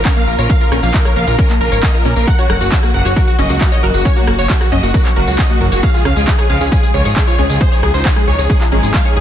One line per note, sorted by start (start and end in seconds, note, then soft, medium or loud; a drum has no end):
0.05 0.13 C#3 medium
0.05 0.13 A#3 medium
0.05 0.11 C#4 loud
0.05 0.13 F4 medium
0.05 0.14 A#4 medium
0.05 kick loud
0.05 clap loud
0.05 closed hi-hat soft
0.05 tambourine soft
0.16 0.32 C#3 medium
0.16 0.32 F3 medium
0.16 0.32 A#3 medium
0.16 0.22 A#3 medium
0.16 0.32 F4 medium
0.16 0.25 F5 medium
0.16 0.25 F5 loud
0.16 closed hi-hat soft
0.16 tambourine soft
0.27 0.37 A#1 medium
0.27 0.36 A#4 medium
0.27 0.31 A#4 medium
0.27 0.36 A#4 medium
0.27 open hi-hat loud
0.38 0.48 A#1 medium
0.38 0.46 C#3 medium
0.38 0.46 F3 medium
0.38 0.46 A#3 medium
0.38 0.46 F4 medium
0.38 0.47 A#4 medium
0.38 0.47 C#5 loud
0.38 closed hi-hat medium
0.38 tambourine medium
0.50 0.53 A#4 loud
0.50 0.58 F5 medium
0.50 kick loud
0.50 closed hi-hat medium
0.50 tambourine medium
0.61 0.76 C#3 medium
0.61 0.76 F3 medium
0.61 0.76 A#3 medium
0.61 0.76 F4 medium
0.61 0.69 F4 medium
0.61 0.69 A#4 medium
0.61 0.70 A#4 medium
0.61 closed hi-hat soft
0.61 tambourine soft
0.72 0.81 A#1 loud
0.72 0.78 C#4 loud
0.72 0.81 A#4 medium
0.72 cross-stick medium
0.72 open hi-hat loud
0.83 0.92 A#1 medium
0.83 0.91 C#3 medium
0.83 0.91 F3 medium
0.83 0.89 A#3 medium
0.83 0.91 A#3 medium
0.83 0.91 F4 medium
0.83 0.92 F5 loud
0.83 0.92 F5 medium
0.83 closed hi-hat medium
0.83 tambourine medium
0.94 1.10 C#3 medium
0.94 1.10 F3 medium
0.94 1.10 A#3 medium
0.94 1.10 F4 medium
0.94 1.03 A#4 medium
0.94 0.98 A#4 medium
0.94 1.03 A#4 medium
0.94 kick loud
0.94 clap loud
0.94 closed hi-hat medium
0.94 tambourine medium
1.05 1.14 A#4 medium
1.05 1.14 C#5 loud
1.05 cross-stick medium
1.05 closed hi-hat soft
1.05 tambourine soft
1.16 1.25 A#1 loud
1.16 1.32 C#3 medium
1.16 1.32 F3 medium
1.16 1.32 A#3 medium
1.16 1.32 F4 medium
1.16 1.20 A#4 loud
1.16 1.25 F5 loud
1.16 open hi-hat loud
1.27 1.36 A#1 medium
1.27 1.36 F4 medium
1.27 1.36 A#4 medium
1.27 closed hi-hat medium
1.27 tambourine medium
1.38 1.54 C#3 medium
1.38 1.54 F3 medium
1.38 1.54 A#3 medium
1.38 1.44 C#4 loud
1.38 1.54 F4 medium
1.38 1.47 A#4 medium
1.38 kick loud
1.38 closed hi-hat medium
1.38 tambourine medium
1.50 1.55 A#3 medium
1.50 clap soft
1.50 closed hi-hat soft
1.50 tambourine soft
1.61 1.70 A#1 medium
1.61 1.76 C#3 medium
1.61 1.76 F3 medium
1.61 1.76 A#3 medium
1.61 1.76 F4 medium
1.61 1.64 A#4 medium
1.61 1.70 A#4 medium
1.61 open hi-hat loud
1.72 1.81 G#1 medium
1.72 1.81 A#4 medium
1.72 1.80 C#5 loud
1.72 closed hi-hat medium
1.72 tambourine medium
1.83 1.91 C#3 medium
1.83 1.91 F3 medium
1.83 1.91 A#3 medium
1.83 1.91 F4 medium
1.83 1.86 A#4 loud
1.83 1.92 D#5 medium
1.83 kick loud
1.83 clap loud
1.83 closed hi-hat soft
1.83 tambourine soft
1.94 2.10 C#3 medium
1.94 2.10 F3 medium
1.94 2.10 A#3 medium
1.94 2.03 F4 medium
1.94 2.10 F4 medium
1.94 2.03 A#4 medium
1.94 closed hi-hat soft
1.94 tambourine soft
2.05 2.14 A#2 medium
2.05 2.11 C#4 loud
2.05 2.14 A#4 medium
2.05 open hi-hat loud
2.16 2.25 A#1 medium
2.16 2.24 C#3 medium
2.16 2.24 F3 medium
2.16 2.24 A#3 medium
2.16 2.22 A#3 medium
2.16 2.24 F4 medium
2.16 2.25 A#4 medium
2.16 closed hi-hat medium
2.16 tambourine medium
2.27 2.31 A#4 medium
2.27 2.36 F#5 loud
2.27 kick loud
2.27 closed hi-hat soft
2.27 tambourine medium
2.38 2.54 C#3 medium
2.38 2.54 F#3 medium
2.38 2.54 A#3 medium
2.38 2.54 F#4 medium
2.38 2.47 F#4 medium
2.38 2.47 C#5 loud
2.38 closed hi-hat soft
2.38 tambourine soft
2.50 2.59 F#1 loud
2.50 2.53 A#4 loud
2.50 2.58 F#5 loud
2.50 2.58 F#5 medium
2.50 cross-stick medium
2.50 open hi-hat loud
2.61 2.70 F#1 medium
2.61 2.69 C#3 medium
2.61 2.68 F#3 medium
2.61 2.69 A#3 medium
2.61 2.69 F#4 medium
2.61 2.70 F#4 medium
2.61 closed hi-hat medium
2.61 tambourine medium
2.72 2.87 C#3 medium
2.72 2.87 F#3 medium
2.72 2.87 A#3 medium
2.72 2.78 C#4 loud
2.72 2.81 F#4 medium
2.72 2.87 F#4 medium
2.72 2.81 F#4 medium
2.72 kick loud
2.72 clap loud
2.72 closed hi-hat medium
2.72 tambourine medium
2.83 2.89 A#3 medium
2.83 2.92 F#4 medium
2.83 cross-stick medium
2.83 closed hi-hat soft
2.83 tambourine soft
2.94 3.03 F#1 medium
2.94 3.10 C#3 medium
2.94 3.10 F#3 medium
2.94 3.10 A#3 medium
2.94 3.10 F#4 medium
2.94 2.98 A#4 medium
2.94 3.03 F#5 loud
2.94 open hi-hat loud
3.05 3.14 F#1 medium
3.05 3.14 F#4 medium
3.05 3.14 C#5 loud
3.05 closed hi-hat medium
3.05 tambourine medium
3.16 3.32 C#3 medium
3.16 3.32 F#3 medium
3.16 3.32 A#3 medium
3.16 3.32 F#4 medium
3.16 3.25 F#4 medium
3.16 3.20 A#4 loud
3.16 kick loud
3.16 closed hi-hat medium
3.16 tambourine medium
3.27 3.36 F#4 medium
3.27 closed hi-hat soft
3.27 tambourine soft
3.39 3.48 F#1 loud
3.39 3.54 C#3 medium
3.39 3.54 F#3 medium
3.39 3.54 A#3 medium
3.39 3.44 C#4 loud
3.39 3.54 F#4 medium
3.39 3.47 D#5 medium
3.39 3.47 D#5 loud
3.39 open hi-hat loud
3.50 3.59 C#2 medium
3.50 3.55 A#3 medium
3.50 3.58 F#4 medium
3.50 closed hi-hat medium
3.50 tambourine medium
3.61 3.69 F#3 medium
3.61 3.69 A#3 medium
3.61 3.69 F#4 medium
3.61 3.70 F#4 medium
3.61 3.64 A#4 medium
3.61 kick loud
3.61 clap loud
3.61 closed hi-hat soft
3.61 tambourine medium
3.72 3.88 C#3 medium
3.72 3.88 F#3 medium
3.72 3.88 A#3 medium
3.72 3.88 F#4 medium
3.72 3.80 C#5 loud
3.72 3.81 D#5 medium
3.72 3.81 D#5 loud
3.72 closed hi-hat soft
3.72 tambourine soft
3.83 3.92 F#1 medium
3.83 3.92 F#4 medium
3.83 3.86 A#4 loud
3.83 open hi-hat loud
3.94 4.03 F#1 medium
3.94 4.02 C#3 medium
3.94 4.02 F#3 medium
3.94 4.02 A#3 medium
3.94 4.03 F#4 medium
3.94 4.02 F#4 medium
3.94 4.03 F#4 medium
3.94 closed hi-hat medium
3.94 tambourine medium
4.05 4.11 C#4 loud
4.05 4.14 C#5 medium
4.05 4.14 C#5 loud
4.05 kick loud
4.05 closed hi-hat medium
4.05 tambourine medium
4.16 4.32 C#3 medium
4.16 4.32 F#3 medium
4.16 4.32 A#3 medium
4.16 4.22 A#3 medium
4.16 4.32 F#4 medium
4.16 4.25 F#4 medium
4.16 closed hi-hat soft
4.16 tambourine soft
4.27 4.37 F#1 loud
4.27 4.36 F#4 medium
4.27 4.31 A#4 medium
4.27 cross-stick medium
4.27 open hi-hat loud
4.39 4.48 F#1 medium
4.39 4.46 C#3 medium
4.39 4.46 F#3 medium
4.39 4.46 A#3 medium
4.39 4.46 F#4 medium
4.39 4.47 C#5 loud
4.39 4.47 C#5 medium
4.39 closed hi-hat medium
4.39 tambourine medium
4.50 4.65 C#3 medium
4.50 4.65 F#3 medium
4.50 4.65 A#3 medium
4.50 4.65 F#4 medium
4.50 4.58 F#4 medium
4.50 4.53 A#4 loud
4.50 kick loud
4.50 clap loud
4.50 closed hi-hat medium
4.50 tambourine medium
4.61 4.69 F#4 medium
4.61 4.70 F#4 medium
4.61 cross-stick medium
4.61 closed hi-hat soft
4.61 tambourine soft
4.72 4.81 F#1 loud
4.72 4.88 C#3 medium
4.72 4.88 F#3 medium
4.72 4.88 A#3 medium
4.72 4.78 C#4 loud
4.72 4.88 F#4 medium
4.72 4.81 D#5 medium
4.72 4.81 D#5 loud
4.72 open hi-hat loud
4.83 4.92 F#1 medium
4.83 4.89 A#3 medium
4.83 4.92 F#4 medium
4.83 closed hi-hat medium
4.83 tambourine medium
4.94 5.10 C#3 medium
4.94 5.10 F#3 medium
4.94 5.10 A#3 medium
4.94 5.03 F#4 medium
4.94 5.10 F#4 medium
4.94 4.98 A#4 medium
4.94 kick loud
4.94 closed hi-hat medium
4.94 tambourine medium
5.05 5.14 C#5 loud
5.05 clap soft
5.05 closed hi-hat soft
5.05 tambourine soft
5.16 5.25 F#1 medium
5.16 5.32 C#3 medium
5.16 5.32 F#3 medium
5.16 5.32 A#3 medium
5.16 5.32 F#4 medium
5.16 5.25 F#4 medium
5.16 5.20 A#4 loud
5.16 open hi-hat loud
5.27 5.37 C#2 medium
5.27 5.36 F#4 medium
5.27 closed hi-hat medium
5.27 tambourine medium
5.39 5.46 C#3 medium
5.39 5.46 F#3 medium
5.39 5.46 A#3 medium
5.39 5.44 C#4 loud
5.39 5.46 F#4 medium
5.39 5.47 D#5 loud
5.39 kick loud
5.39 clap loud
5.39 closed hi-hat medium
5.39 tambourine medium
5.50 5.65 C#3 medium
5.50 5.65 F#3 medium
5.50 5.55 A#3 medium
5.50 5.65 A#3 medium
5.50 5.65 F#4 medium
5.50 5.58 F#4 medium
5.50 closed hi-hat soft
5.50 tambourine soft
5.61 5.70 F#1 medium
5.61 5.70 F#4 medium
5.61 5.64 A#4 medium
5.61 open hi-hat loud
5.72 5.81 F#1 medium
5.72 5.80 C#3 medium
5.72 5.80 F#3 medium
5.72 5.80 A#3 medium
5.72 5.81 F#4 medium
5.72 5.80 F#4 medium
5.72 5.81 F#4 medium
5.72 5.80 C#5 loud
5.72 closed hi-hat medium
5.72 tambourine medium
5.83 5.86 G#4 loud
5.83 5.92 F5 loud
5.83 kick loud
5.83 closed hi-hat medium
5.83 tambourine medium
5.94 6.10 C#3 medium
5.94 6.10 F3 medium
5.94 6.10 G#3 medium
5.94 6.03 F4 medium
5.94 6.10 F4 medium
5.94 6.03 G#4 medium
5.94 closed hi-hat soft
5.94 tambourine soft
6.05 6.14 C#2 loud
6.05 6.11 C#4 loud
6.05 6.14 F5 medium
6.05 6.14 F5 loud
6.05 cross-stick medium
6.05 open hi-hat loud
6.16 6.25 C#2 medium
6.16 6.24 C#3 medium
6.16 6.24 F3 medium
6.16 6.24 G#3 medium
6.16 6.22 G#3 medium
6.16 6.24 F4 medium
6.16 6.25 G#4 medium
6.16 closed hi-hat medium
6.16 tambourine medium
6.27 6.43 C#3 medium
6.27 6.43 F3 medium
6.27 6.43 G#3 medium
6.27 6.43 F4 medium
6.27 6.31 G#4 medium
6.27 6.36 G#4 medium
6.27 kick loud
6.27 clap loud
6.27 closed hi-hat medium
6.27 tambourine medium
6.38 6.47 G#4 medium
6.38 6.47 C#5 loud
6.38 cross-stick medium
6.38 closed hi-hat soft
6.38 tambourine soft
6.50 6.59 C#2 loud
6.50 6.65 C#3 medium
6.50 6.65 F3 medium
6.50 6.65 G#3 medium
6.50 6.65 F4 medium
6.50 6.53 G#4 loud
6.50 6.58 F5 loud
6.50 6.59 F5 loud
6.50 open hi-hat loud
6.61 6.70 C#2 medium
6.61 6.69 F4 medium
6.61 6.69 G#4 medium
6.61 6.70 G#4 medium
6.61 closed hi-hat medium
6.61 tambourine medium
6.72 6.87 C#3 medium
6.72 6.88 F3 medium
6.72 6.88 G#3 medium
6.72 6.78 C#4 loud
6.72 6.88 F4 medium
6.72 6.81 G#4 medium
6.72 kick loud
6.72 closed hi-hat medium
6.72 tambourine medium
6.83 6.89 G#3 medium
6.83 6.92 G#4 medium
6.83 closed hi-hat soft
6.83 tambourine soft
6.94 7.03 C#2 loud
6.94 7.10 C#3 medium
6.94 7.10 F3 medium
6.94 7.10 G#3 medium
6.94 7.10 F4 medium
6.94 6.98 G#4 medium
6.94 7.03 C#5 loud
6.94 open hi-hat loud
7.05 7.14 G#1 medium
7.05 7.14 G#4 medium
7.05 7.14 C#5 loud
7.05 closed hi-hat medium
7.05 tambourine medium
7.16 7.24 C#3 medium
7.16 7.24 F3 medium
7.16 7.24 G#3 medium
7.16 7.24 F4 medium
7.16 7.25 G#4 medium
7.16 7.20 G#4 loud
7.16 7.25 G#4 medium
7.16 kick loud
7.16 clap loud
7.16 closed hi-hat medium
7.16 tambourine medium
7.27 7.43 C#3 medium
7.27 7.43 F3 medium
7.27 7.43 G#3 medium
7.27 7.36 F4 medium
7.27 7.43 F4 medium
7.27 7.36 C#5 loud
7.27 7.36 C#5 medium
7.27 closed hi-hat soft
7.27 tambourine soft
7.38 7.48 C#2 medium
7.38 7.44 C#4 loud
7.38 7.47 G#4 medium
7.38 open hi-hat loud
7.50 7.59 C#2 medium
7.50 7.58 C#3 medium
7.50 7.58 F3 medium
7.50 7.55 G#3 medium
7.50 7.58 G#3 medium
7.50 7.58 F4 medium
7.50 7.58 G#4 medium
7.50 closed hi-hat medium
7.50 tambourine medium
7.61 7.64 G#4 medium
7.61 7.69 C5 loud
7.61 7.70 C5 medium
7.61 kick loud
7.61 closed hi-hat medium
7.61 tambourine medium
7.72 7.87 C#3 medium
7.72 7.87 F3 medium
7.72 7.87 G#3 medium
7.72 7.87 D#4 medium
7.72 7.81 G#4 medium
7.72 7.80 C#5 loud
7.72 closed hi-hat soft
7.72 tambourine soft
7.83 7.92 C#2 loud
7.83 7.92 G#4 medium
7.83 7.86 G#4 loud
7.83 7.92 G#4 medium
7.83 cross-stick medium
7.83 open hi-hat loud
7.94 8.03 C#2 medium
7.94 8.02 C#3 medium
7.94 8.02 F3 medium
7.94 8.02 G#3 medium
7.94 8.02 D#4 medium
7.94 8.03 F4 medium
7.94 8.03 C5 medium
7.94 8.03 C5 loud
7.94 closed hi-hat medium
7.94 tambourine medium
8.05 8.21 C#3 medium
8.05 8.21 F3 medium
8.05 8.21 G#3 medium
8.05 8.11 C#4 loud
8.05 8.21 D#4 medium
8.05 8.14 G#4 medium
8.05 kick loud
8.05 clap loud
8.05 closed hi-hat medium
8.05 tambourine medium
8.16 8.22 G#3 medium
8.16 8.25 G#4 medium
8.16 cross-stick medium
8.16 closed hi-hat soft
8.16 tambourine soft
8.27 8.37 C#2 loud
8.27 8.43 C#3 medium
8.27 8.43 F3 medium
8.27 8.43 G#3 medium
8.27 8.43 D#4 medium
8.27 8.31 G#4 medium
8.27 8.36 C#5 loud
8.27 open hi-hat loud
8.39 8.48 C#2 medium
8.39 8.47 G#4 medium
8.39 8.47 C#5 loud
8.39 closed hi-hat medium
8.39 tambourine medium
8.49 8.65 C#3 medium
8.49 8.65 F3 medium
8.49 8.65 G#3 medium
8.49 8.65 D#4 medium
8.49 8.53 G#4 loud
8.49 8.58 G#4 medium
8.49 kick loud
8.49 closed hi-hat medium
8.49 tambourine medium
8.61 8.69 F4 medium
8.61 clap soft
8.61 closed hi-hat soft
8.61 tambourine soft
8.72 8.81 G#1 medium
8.72 8.88 C#3 medium
8.72 8.87 F3 medium
8.72 8.88 G#3 medium
8.72 8.78 C#4 loud
8.72 8.88 D#4 medium
8.72 8.81 G#4 medium
8.72 open hi-hat loud
8.83 8.92 G#1 medium
8.83 8.89 G#3 medium
8.83 8.92 G#4 medium
8.83 closed hi-hat medium
8.83 tambourine medium
8.94 9.02 C#3 medium
8.94 9.02 F3 medium
8.94 9.02 G#3 medium
8.94 9.02 D#4 medium
8.94 8.98 G#4 medium
8.94 9.03 F5 medium
8.94 9.03 F5 loud
8.94 kick loud
8.94 clap loud
8.94 closed hi-hat medium
8.94 tambourine medium
9.05 9.21 C#3 medium
9.05 9.21 F3 medium
9.05 9.21 G#3 medium
9.05 9.21 D#4 medium
9.05 9.14 G#4 medium
9.05 9.14 C#5 loud
9.05 closed hi-hat soft
9.05 tambourine soft
9.16 9.21 C#2 medium
9.16 9.21 G#4 medium
9.16 9.20 G#4 loud
9.16 9.21 G#4 medium
9.16 open hi-hat loud